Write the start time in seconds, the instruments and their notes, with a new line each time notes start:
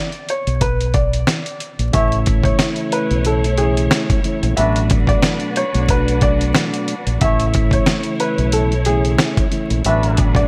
Already playing: upright piano D5
0.12 closed hi-hat
0.29 upright piano C#5, closed hi-hat
0.47 fingered electric bass B1, closed hi-hat
0.61 upright piano B4, kick, closed hi-hat
0.81 closed hi-hat
0.94 upright piano D5, kick, closed hi-hat
1.13 closed hi-hat
1.27 snare, closed hi-hat
1.46 closed hi-hat
1.60 closed hi-hat
1.79 fingered electric bass A#1, closed hi-hat
1.91 fingered electric bass A1, tonewheel organ C#3 E3 A3 E4, string section A3 E4 C#5, trumpet section E4 A4 C#5, upright piano E5, kick, closed hi-hat
2.12 closed hi-hat
2.26 kick, closed hi-hat
2.43 upright piano C#5, kick, closed hi-hat
2.59 snare, closed hi-hat
2.76 closed hi-hat
2.92 upright piano B4, closed hi-hat
3.11 fingered electric bass B1, closed hi-hat
3.25 upright piano A4, closed hi-hat
3.44 closed hi-hat
3.57 tonewheel organ C#3 E3 A3 E4, upright piano G#4, closed hi-hat
3.77 closed hi-hat
3.91 snare, closed hi-hat
4.10 kick, closed hi-hat
4.22 tonewheel organ C#3 E3 A3 E4, closed hi-hat
4.43 fingered electric bass A#1, closed hi-hat
4.56 fingered electric bass A1, tonewheel organ B2 F#3 A3 D4, trumpet section D4 F#4 B4, string section D4 F#4 B4, upright piano E5, closed hi-hat
4.76 closed hi-hat
4.90 kick, closed hi-hat
5.07 upright piano D5, kick, closed hi-hat
5.22 snare, closed hi-hat
5.40 closed hi-hat
5.56 upright piano C#5, closed hi-hat
5.73 fingered electric bass B1, tonewheel organ B2 F#3 A3 D4, closed hi-hat
5.88 upright piano B4, kick, closed hi-hat
6.08 closed hi-hat
6.21 upright piano D5, kick, closed hi-hat
6.41 closed hi-hat
6.55 snare, closed hi-hat
6.74 closed hi-hat
6.88 closed hi-hat
7.07 fingered electric bass A#1, closed hi-hat
7.19 fingered electric bass A1, tonewheel organ C#3 E3 A3 E4, trumpet section E4 A4 C#5, upright piano E5, kick, closed hi-hat
7.23 string section A3 E4 C#5
7.40 closed hi-hat
7.54 kick, closed hi-hat
7.71 upright piano C#5, kick, closed hi-hat
7.86 snare, closed hi-hat
8.03 closed hi-hat
8.20 upright piano B4, closed hi-hat
8.38 fingered electric bass B1, closed hi-hat
8.52 upright piano A4, closed hi-hat
8.72 closed hi-hat
8.85 tonewheel organ C#3 E3 A3 E4, upright piano G#4, closed hi-hat
9.05 closed hi-hat
9.18 snare, closed hi-hat
9.37 kick, closed hi-hat
9.50 tonewheel organ C#3 E3 A3 E4, closed hi-hat
9.70 fingered electric bass A#1, closed hi-hat
9.84 fingered electric bass A1, tonewheel organ B2 F#3 A3 D4, trumpet section D4 F#4 B4, string section D4 F#4 B4, upright piano E5, closed hi-hat
10.03 closed hi-hat
10.17 kick, closed hi-hat
10.35 upright piano D5, kick, closed hi-hat